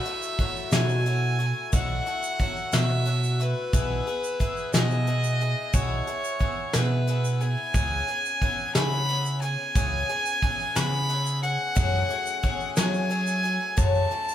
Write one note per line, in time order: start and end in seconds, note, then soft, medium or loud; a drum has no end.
0.00 0.76 E5 medium
0.05 0.39 A3 soft
0.05 0.39 E4 soft
0.05 0.39 F#4 soft
0.05 closed hi-hat medium
0.22 shaker medium
0.38 0.72 F#3 medium
0.38 0.72 A3 medium
0.38 0.72 E4 medium
0.38 0.71 F#4 medium
0.38 kick medium
0.38 closed hi-hat medium
0.56 shaker soft
0.71 1.52 B2 medium
0.71 1.06 B2 soft
0.71 1.05 F#3 medium
0.71 1.05 A3 medium
0.71 1.06 E4 medium
0.71 1.06 F#4 medium
0.71 1.73 G#5 medium
0.71 snare loud
0.71 closed hi-hat medium
0.71 shaker loud
0.89 shaker soft
1.06 1.39 F#3 medium
1.06 1.39 A3 medium
1.06 1.39 E4 medium
1.06 1.37 F#4 medium
1.06 closed hi-hat soft
1.39 1.72 A3 soft
1.39 1.72 E4 soft
1.39 1.72 F#4 soft
1.39 closed hi-hat medium
1.72 1.99 B1 medium
1.72 2.06 B2 medium
1.72 2.06 F#3 medium
1.72 2.06 A3 medium
1.72 2.06 E4 medium
1.72 2.05 F#4 medium
1.72 2.76 F#5 medium
1.72 kick loud
1.72 closed hi-hat medium
1.72 shaker loud
2.06 2.39 A3 soft
2.06 2.39 E4 soft
2.06 2.39 F#4 soft
2.06 closed hi-hat medium
2.23 shaker medium
2.39 2.72 F#3 medium
2.39 2.71 A3 medium
2.39 2.72 E4 medium
2.39 2.71 F#4 medium
2.39 kick medium
2.39 closed hi-hat medium
2.56 shaker soft
2.72 3.53 B2 medium
2.72 3.07 B2 medium
2.72 3.04 F#3 soft
2.72 3.05 A3 medium
2.72 3.05 E4 medium
2.72 3.06 F#4 medium
2.72 3.43 E5 medium
2.72 snare loud
2.72 closed hi-hat medium
2.72 shaker medium
3.05 3.39 F#3 medium
3.05 3.40 A3 medium
3.05 3.39 E4 medium
3.05 3.38 F#4 medium
3.05 closed hi-hat medium
3.23 shaker medium
3.40 3.74 A3 soft
3.40 3.73 E4 soft
3.40 3.73 F#4 medium
3.40 4.73 B4 medium
3.40 closed hi-hat medium
3.73 4.00 B1 medium
3.73 4.07 B2 medium
3.73 4.07 E3 medium
3.73 4.07 B3 medium
3.73 4.07 E4 medium
3.73 4.06 G#4 medium
3.73 kick loud
3.73 closed hi-hat medium
3.73 shaker medium
4.07 4.39 B3 soft
4.07 4.40 E4 soft
4.07 4.40 G#4 medium
4.07 closed hi-hat medium
4.24 shaker medium
4.40 4.73 E3 medium
4.40 4.74 B3 medium
4.40 4.73 E4 medium
4.40 4.73 G#4 medium
4.40 kick medium
4.40 closed hi-hat medium
4.57 shaker soft
4.73 5.54 B2 medium
4.73 5.08 B2 medium
4.73 5.06 E3 medium
4.73 5.06 B3 medium
4.73 5.07 E4 medium
4.73 5.07 G#4 medium
4.73 5.76 D#5 loud
4.73 snare loud
4.73 closed hi-hat medium
4.73 shaker medium
4.91 shaker soft
5.07 5.40 E3 medium
5.07 5.41 B3 medium
5.07 5.41 E4 medium
5.07 5.40 G#4 medium
5.07 closed hi-hat medium
5.24 shaker medium
5.41 5.73 B3 soft
5.41 5.73 E4 soft
5.41 5.74 G#4 medium
5.41 closed hi-hat medium
5.73 6.01 B1 medium
5.73 6.07 B2 medium
5.73 6.07 E3 medium
5.73 6.08 B3 medium
5.73 6.07 E4 medium
5.73 6.06 G#4 medium
5.73 6.76 C#5 medium
5.73 kick loud
5.73 closed hi-hat medium
5.73 shaker medium
6.07 6.39 B3 soft
6.07 6.40 E4 soft
6.07 6.41 G#4 soft
6.07 closed hi-hat medium
6.24 shaker medium
6.39 6.74 E3 medium
6.39 6.74 B3 medium
6.39 6.73 E4 medium
6.39 6.73 G#4 medium
6.39 kick medium
6.39 closed hi-hat medium
6.73 7.55 B2 medium
6.73 7.09 B2 soft
6.73 7.06 E3 medium
6.73 7.07 B3 medium
6.73 7.07 E4 medium
6.73 7.08 G#4 medium
6.73 7.43 B4 medium
6.73 snare loud
6.73 closed hi-hat medium
6.73 shaker medium
7.07 7.41 E3 medium
7.07 7.41 B3 medium
7.07 7.41 E4 medium
7.07 7.39 G#4 medium
7.07 closed hi-hat medium
7.07 shaker soft
7.25 shaker medium
7.41 7.75 B3 soft
7.41 7.75 E4 soft
7.41 7.74 G#4 soft
7.41 8.74 G#5 medium
7.41 closed hi-hat soft
7.41 shaker soft
7.74 8.01 C#2 medium
7.74 8.08 C#3 medium
7.74 8.09 E3 medium
7.74 8.09 B3 medium
7.74 8.08 C#4 medium
7.74 8.07 G#4 medium
7.74 kick loud
7.74 closed hi-hat medium
7.74 shaker medium
8.08 8.41 B3 soft
8.08 8.42 C#4 soft
8.08 8.41 G#4 soft
8.08 closed hi-hat medium
8.25 shaker medium
8.42 8.74 E3 medium
8.42 8.74 B3 medium
8.42 8.74 C#4 medium
8.42 8.74 G#4 medium
8.42 kick medium
8.42 closed hi-hat medium
8.59 shaker soft
8.75 9.56 C#3 medium
8.75 9.09 C#3 soft
8.75 9.08 E3 medium
8.75 9.08 B3 medium
8.75 9.09 C#4 medium
8.75 9.08 G#4 medium
8.75 9.38 B5 loud
8.75 snare loud
8.75 closed hi-hat medium
8.75 shaker medium
8.92 shaker soft
9.09 9.42 E3 medium
9.09 9.42 B3 medium
9.09 9.42 C#4 medium
9.09 9.40 G#4 medium
9.09 closed hi-hat medium
9.25 shaker medium
9.42 9.75 B3 soft
9.42 9.75 C#4 soft
9.42 9.75 G#4 soft
9.42 10.77 G#5 loud
9.42 closed hi-hat medium
9.75 10.02 C#2 medium
9.75 10.09 C#3 medium
9.75 10.09 E3 medium
9.75 10.09 B3 medium
9.75 10.09 C#4 medium
9.75 10.08 G#4 medium
9.75 kick loud
9.75 closed hi-hat medium
9.75 shaker medium
10.09 10.42 B3 soft
10.09 10.42 C#4 soft
10.09 10.43 G#4 medium
10.09 closed hi-hat medium
10.26 shaker medium
10.42 10.76 E3 medium
10.42 10.75 B3 medium
10.42 10.75 C#4 medium
10.42 10.74 G#4 medium
10.42 kick medium
10.42 closed hi-hat medium
10.59 shaker soft
10.75 11.56 C#3 medium
10.75 11.10 C#3 soft
10.75 11.08 E3 medium
10.75 11.08 B3 medium
10.75 11.09 C#4 medium
10.75 11.09 G#4 medium
10.75 11.42 B5 loud
10.75 snare loud
10.75 closed hi-hat medium
10.75 shaker medium
10.92 shaker soft
11.09 11.43 E3 medium
11.09 11.43 B3 medium
11.09 11.43 C#4 medium
11.09 11.42 G#4 medium
11.09 closed hi-hat medium
11.26 shaker medium
11.43 11.76 B3 soft
11.43 11.75 C#4 soft
11.43 11.75 G#4 soft
11.43 12.73 F#5 loud
11.43 closed hi-hat medium
11.75 12.09 F#2 medium
11.75 12.03 F#2 medium
11.75 12.09 C#3 medium
11.75 12.10 F#3 medium
11.75 12.10 A3 medium
11.75 12.09 C#4 medium
11.75 12.08 G#4 medium
11.75 kick loud
11.75 closed hi-hat medium
11.75 shaker medium
12.09 12.42 F#3 soft
12.09 12.42 A3 soft
12.09 12.43 C#4 soft
12.09 12.43 G#4 soft
12.09 closed hi-hat medium
12.26 shaker medium
12.43 12.76 F#3 medium
12.43 12.76 A3 medium
12.43 12.76 C#4 medium
12.43 12.75 G#4 medium
12.43 kick medium
12.43 closed hi-hat medium
12.60 shaker soft
12.76 13.11 F#2 medium
12.76 13.11 C#3 medium
12.76 13.08 F#3 medium
12.76 13.58 F#3 medium
12.76 13.09 A3 medium
12.76 13.10 C#4 medium
12.76 13.10 G#4 medium
12.76 13.79 G#5 loud
12.76 snare loud
12.76 closed hi-hat medium
12.76 shaker medium
12.94 shaker soft
13.10 13.44 F#3 medium
13.10 13.43 A3 medium
13.10 13.42 C#4 medium
13.10 13.42 G#4 medium
13.10 closed hi-hat medium
13.27 shaker medium
13.43 13.76 F#3 soft
13.43 13.76 A3 soft
13.43 13.76 C#4 soft
13.43 13.77 G#4 soft
13.43 closed hi-hat soft
13.77 14.11 F#2 medium
13.77 14.05 F#2 medium
13.77 14.11 C#3 medium
13.77 14.11 F#3 medium
13.77 14.10 A3 medium
13.77 14.10 C#4 medium
13.77 14.35 A5 loud
13.77 kick loud
13.77 closed hi-hat medium
13.77 shaker medium
13.94 shaker soft
14.11 14.35 F#3 soft
14.11 14.35 A3 soft
14.11 14.35 C#4 soft
14.11 closed hi-hat medium
14.29 shaker medium